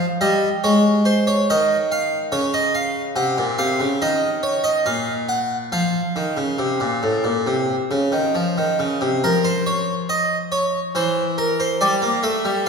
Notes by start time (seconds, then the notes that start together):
0.21 G3 D#5
0.64 G#3 C#5
1.05 C5
1.27 C#5
1.50 D#3 D#5
1.92 F5
2.32 C#3 C#5
2.54 D#5
2.75 F5
3.16 C3 F#5
3.38 A#2
3.58 C3 F5
3.80 C#3
4.02 D#3 D#5
4.43 C#5
4.64 D#5
4.86 A#2 F5
5.29 F#5
5.72 F3 F5
6.16 D#3
6.37 C#3
6.58 C3
6.80 A#2
7.03 A2
7.24 A#2
7.47 C3
7.91 C#3
8.12 D#3
8.35 F3
8.58 D#3
8.79 C#3
9.01 C3
9.24 F3 A#4
9.44 C5
9.66 C#5
10.09 D#5
10.52 C#5
10.95 E3 C5
11.38 A#4
11.60 C5
11.81 G3 D5
12.02 A#3
12.23 A3 E5
12.45 G3